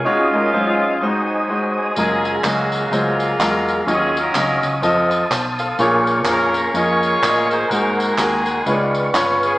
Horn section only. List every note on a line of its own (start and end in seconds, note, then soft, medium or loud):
0.05 0.97 C#4 medium
0.05 1.01 F4 medium
1.01 1.93 F#3 medium
1.01 1.93 C4 medium
1.01 1.49 D#4 medium
1.79 1.96 G#4 medium
1.98 2.44 C#4 medium
1.98 2.89 F4 medium
1.98 2.42 G#4 loud
2.45 2.92 A#3 medium
2.45 3.36 C#4 medium
2.45 2.89 F#4 medium
2.93 3.84 G#3 medium
2.93 3.84 A#3 medium
2.93 3.86 F4 medium
3.88 4.17 C#4 medium
3.88 4.79 F4 medium
3.88 4.16 G#4 loud
4.18 4.80 C#4 medium
4.18 4.80 F#4 medium
4.18 4.65 A#4 loud
6.28 7.20 C#4 medium
6.28 6.75 F4 medium
6.28 6.72 A#4 loud
6.75 7.67 F4 medium
6.75 7.67 G#4 medium
6.75 7.51 C#5 loud
7.49 7.69 C5 loud
7.67 8.18 D#4 medium
7.67 8.62 F#4 medium
7.67 8.17 A#4 loud
8.17 9.11 C4 medium
8.17 9.11 D#4 medium
8.17 9.10 G#4 medium
9.45 9.58 G#4 medium